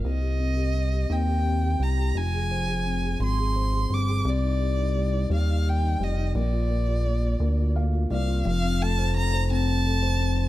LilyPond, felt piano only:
\new Staff \with { instrumentName = "Felt piano" } { \time 6/8 \key c \minor \tempo 4. = 57 << { r2. | r2. | r2. | r2 f''8 d''8 |
\key f \major r2. | } \\ { c'16 g'16 c'16 g'16 c'16 g'16 c'16 g'16 c'16 g'16 c'16 g'16 | f16 aes'16 c''16 aes'16 c'16 aes'16 c'16 aes'16 c''16 aes'16 c'16 aes'16 | c16 ees'16 g'16 ees'16 g16 ees'16 g16 ees'16 g'16 ees'16 g16 ees'16 | bes16 f'16 bes16 f'16 bes16 f'16 bes16 f'16 bes16 f'16 bes16 f'16 |
f16 c'16 a16 c''16 c'16 c''16 c'8 a'16 c''16 c'16 c''16 | } >> }